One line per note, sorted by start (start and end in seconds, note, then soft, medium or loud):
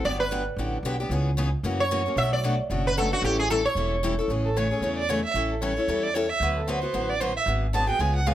0.04 0.47 G1 medium
0.04 0.23 D3 medium
0.04 0.23 F#3 medium
0.04 0.23 B3 medium
0.04 0.23 D4 medium
0.04 0.24 G4 medium
0.04 0.19 D5 loud
0.20 0.45 B4 medium
0.31 0.41 D3 medium
0.31 0.42 F#3 medium
0.31 0.42 B3 medium
0.31 0.42 D4 medium
0.31 0.42 G4 medium
0.56 0.80 A1 medium
0.56 0.76 D3 medium
0.56 0.77 F#3 medium
0.56 0.77 B3 medium
0.56 0.77 D4 medium
0.56 0.77 G4 medium
0.83 1.06 B1 medium
0.83 0.95 D3 medium
0.83 0.95 F#3 medium
0.83 0.95 B3 medium
0.83 0.95 D4 medium
0.83 0.95 G4 loud
1.00 1.11 B3 soft
1.00 1.11 D4 medium
1.00 1.11 G4 medium
1.10 1.53 C#2 medium
1.10 1.29 C#3 medium
1.10 1.30 E3 medium
1.10 1.30 B3 medium
1.10 1.30 C#4 medium
1.10 1.30 G#4 medium
1.37 1.48 C#3 medium
1.37 1.48 E3 medium
1.37 1.48 B3 loud
1.37 1.48 C#4 medium
1.37 1.48 G#4 loud
1.63 2.06 F#2 medium
1.63 1.82 C#3 medium
1.63 1.83 E3 medium
1.63 1.83 A#3 medium
1.63 1.83 C#4 medium
1.63 1.83 F#4 medium
1.80 2.15 C#5 loud
1.91 2.01 C#3 medium
1.91 2.01 E3 loud
1.91 2.01 A#3 medium
1.91 2.01 C#4 loud
1.91 2.01 F#4 medium
2.06 2.17 A#3 soft
2.06 2.17 C#4 medium
2.06 2.17 F#4 medium
2.16 2.59 B1 medium
2.16 2.35 B2 medium
2.16 2.35 F#3 medium
2.16 2.36 A3 medium
2.16 2.36 D4 medium
2.16 2.36 F#4 medium
2.16 2.32 E5 loud
2.33 2.57 D5 loud
2.44 2.54 B2 medium
2.44 2.54 F#3 medium
2.44 2.54 A3 medium
2.44 2.54 D4 loud
2.44 2.54 F#4 medium
2.70 3.12 F#1 medium
2.70 2.89 B2 medium
2.70 2.89 F#3 medium
2.70 2.89 A3 medium
2.70 2.89 D4 medium
2.70 2.89 F#4 medium
2.87 2.97 B4 medium
2.97 3.07 B2 medium
2.97 3.07 F#3 loud
2.97 3.07 A3 loud
2.97 3.08 D4 loud
2.97 3.08 F#4 loud
2.97 3.12 A4 medium
3.12 3.24 A3 soft
3.12 3.23 D4 medium
3.12 3.23 F#4 medium
3.22 3.65 A1 loud
3.22 3.42 E3 medium
3.22 3.42 G3 medium
3.22 3.42 C#4 medium
3.22 3.42 E4 medium
3.22 3.38 G4 medium
3.22 3.43 A4 medium
3.39 3.50 G#4 loud
3.50 3.60 E3 medium
3.50 3.61 G3 loud
3.50 3.61 C#4 medium
3.50 3.61 E4 medium
3.50 3.65 A4 medium
3.50 3.61 A4 loud
3.65 4.20 C#5 medium
3.75 4.18 E1 medium
3.75 3.95 E3 medium
3.75 3.95 G3 medium
3.75 3.95 C#4 medium
3.75 3.95 E4 medium
3.75 3.95 A4 medium
4.03 4.13 E3 loud
4.03 4.13 G3 loud
4.03 4.14 C#4 loud
4.03 4.14 E4 loud
4.03 4.14 A4 medium
4.19 4.30 C#4 soft
4.19 4.30 E4 medium
4.19 4.29 A4 medium
4.28 4.71 A1 medium
4.28 4.48 C#3 medium
4.28 4.48 E3 medium
4.28 4.48 A3 medium
4.28 4.48 C#4 medium
4.28 4.49 G#4 medium
4.45 4.58 A4 medium
4.57 4.66 C#3 medium
4.57 4.67 E3 medium
4.57 4.67 A3 medium
4.57 4.67 C#4 medium
4.57 4.67 G#4 medium
4.57 4.97 C#5 medium
4.71 4.82 A3 soft
4.71 4.82 C#4 soft
4.71 4.82 G#4 soft
4.81 5.24 E2 medium
4.81 5.01 C#3 medium
4.81 5.01 E3 medium
4.81 5.01 A3 medium
4.81 5.01 C#4 medium
4.81 5.01 G#4 medium
4.98 5.11 D5 medium
5.09 5.19 C#3 medium
5.09 5.19 E3 medium
5.09 5.20 A3 loud
5.09 5.20 C#4 medium
5.09 5.20 G#4 medium
5.09 5.24 C#5 medium
5.25 5.35 E5 loud
5.34 5.77 A1 medium
5.34 5.54 E3 medium
5.34 5.54 G3 medium
5.34 5.54 C#4 medium
5.34 5.54 E4 medium
5.34 5.54 A4 medium
5.51 5.63 A4 soft
5.62 5.72 E3 medium
5.62 5.72 G3 medium
5.62 5.72 C#4 medium
5.62 5.72 E4 medium
5.62 5.73 A4 medium
5.62 6.05 C#5 medium
5.77 5.88 C#4 soft
5.77 5.88 E4 soft
5.77 5.88 A4 medium
5.88 6.30 E2 medium
5.88 6.07 E3 medium
5.88 6.07 G3 medium
5.88 6.07 C#4 medium
5.88 6.07 E4 medium
5.88 6.07 A4 medium
6.03 6.16 D5 loud
6.14 6.25 E3 medium
6.14 6.25 G3 medium
6.14 6.25 C#4 medium
6.14 6.26 E4 loud
6.14 6.26 A4 loud
6.14 6.31 C#5 medium
6.30 6.41 E5 loud
6.40 6.83 D2 medium
6.40 6.60 D3 medium
6.40 6.60 F#3 medium
6.40 6.60 B3 medium
6.40 6.60 F#4 medium
6.40 6.60 B4 medium
6.56 6.69 A4 medium
6.68 6.78 D3 medium
6.68 6.78 F#3 medium
6.68 6.78 B3 medium
6.68 6.78 F#4 medium
6.68 6.79 B4 loud
6.68 7.11 C5 medium
6.82 6.93 B3 soft
6.82 6.93 F#4 medium
6.82 6.93 B4 medium
6.93 7.36 A1 medium
6.93 7.12 D3 medium
6.93 7.12 F#3 medium
6.93 7.13 B3 medium
6.93 7.13 F#4 medium
6.93 7.13 B4 medium
7.10 7.22 D5 medium
7.21 7.31 D3 medium
7.21 7.31 F#3 medium
7.21 7.31 B3 medium
7.21 7.31 F#4 medium
7.21 7.32 B4 medium
7.21 7.36 C5 medium
7.37 7.43 E5 loud
7.46 7.89 G#1 medium
7.46 7.66 D3 medium
7.46 7.66 F#3 medium
7.46 7.66 B3 medium
7.46 7.66 F#4 medium
7.46 7.66 G#4 medium
7.73 7.84 D3 medium
7.73 7.84 F#3 medium
7.73 7.84 B3 medium
7.73 7.85 F#4 medium
7.73 7.85 G#4 medium
7.73 7.88 A5 medium
7.87 7.99 B3 soft
7.87 8.00 F#4 medium
7.87 7.99 G#4 medium
7.87 8.02 G5 medium
7.99 8.34 C#2 medium
7.99 8.18 C#3 medium
7.99 8.18 G#3 medium
7.99 8.19 B3 medium
7.99 8.19 F4 medium
7.99 8.19 G#4 medium
7.99 8.15 G#5 medium
8.16 8.28 F#5 medium
8.26 8.34 C#3 medium
8.26 8.34 G#3 medium
8.26 8.34 B3 medium
8.26 8.34 F4 medium
8.26 8.34 G#4 medium
8.26 8.34 F5 medium